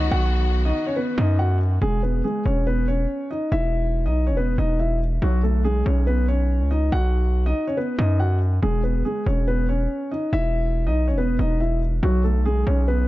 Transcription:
Already playing: D#3 B3 F#4
0.11 B1 F#4 F#5
0.65 D#4 D#5
0.87 C#4 C#5
0.96 B3 B4
1.18 F#2 D#4 D#5
1.39 F#4 F#5
1.82 E1 G#3 G#4
2.03 B3 B4
2.24 G#3 G#4
2.45 E1 C#4 C#5
2.67 B3 B4
2.88 C#4 C#5
3.31 D#4 D#5
3.52 E1 E4 E5
4.06 B1 D#4 D#5
4.27 C#4 C#5
4.32 E1
4.37 B3 B4
4.58 E1 D#4 D#5
4.79 E4 E5
5.22 B1 F#3 F#4
5.43 A3 A4
5.64 G#3 G#4
5.86 B1 C#4 C#5
6.07 B3 B4
6.28 C#4 C#5
6.61 C#2
6.71 D#4 D#5
6.92 B1 F#4 F#5
7.46 D#4 D#5
7.67 C#4 C#5
7.77 B3 B4
7.98 F#2 D#4 D#5
8.20 F#4 F#5
8.62 E1 G#3 G#4
8.84 B3 B4
9.05 G#3 G#4
9.26 E1 C#4 C#5
9.48 B3 B4
9.69 C#4 C#5
10.12 D#4 D#5
10.33 E1 E4 E5
10.87 B1 D#4 D#5
11.08 C#4 C#5
11.13 E1
11.18 B3 B4
11.39 E1 D#4 D#5
11.60 E4 E5
12.03 B1 F#3 F#4
12.24 A3 A4
12.45 G#3 G#4
12.67 B1 C#4 C#5
12.88 B3 B4

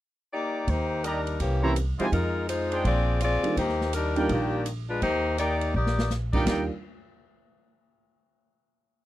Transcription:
0.33 A#3 D#4 G4 D5
0.68 D#2 A#3 D#4 G4 C5, kick, ride
1.04 G3 D4 D#4 G4 A#4 D5 D#5 A#5, hi-hat pedal, ride
1.27 ride
1.40 C2 E3 A#3 C#4 G4, kick, ride
1.62 E3 A#3 C4 C#4 E4 G4 C5 C#5 A#5
1.76 hi-hat pedal, ride
1.99 F3 G#3 A#3 C4 D#4 E4 F4 G4 C5 D#5 G#5, muted upright bass stroke, ride
2.12 F2 G#3 D#4 F4 A#4, kick, ride
2.49 G#3 D#4 F4 C5, hi-hat pedal, ride
2.71 D4 G#4 C5 G5, ride
2.84 A#1 C4 F4 G#4 D5, kick, ride
3.20 C4 F4 G#4 D5, hi-hat pedal, ride
3.42 D#3 G3 A#3 D4 F4, muted upright bass stroke, ride
3.57 D#2 A#3 D#4 G4 C5, kick, ride
3.69 snare
3.81 snare
3.93 G3 D4 D#4 A#4, hi-hat pedal, ride
4.16 D#3 G3 A#3 D4 F4 A#4 D5 G5, ride
4.29 A#1 D#3 A#3 D4 G4, kick, ride
4.66 hi-hat pedal, ride
4.90 G#3 D4 F4 B4
5.02 D#2 A#3 D#4 G4 C5, kick, ride
5.38 A#3 D#4 G4 A#4 D5 G5, hi-hat pedal, ride
5.61 ride
5.74 A#1 A#3 G4 D5 D#5
5.87 snare
5.99 snare
6.10 snare, hi-hat pedal
6.33 D#3 G3 A#3 D4 D#4 F4 A#4 D5 G5, kick, crash
6.46 D#2 D#3 G3 A#3 D4 D#4 F4 A#4 D5 G5, snare, ride bell

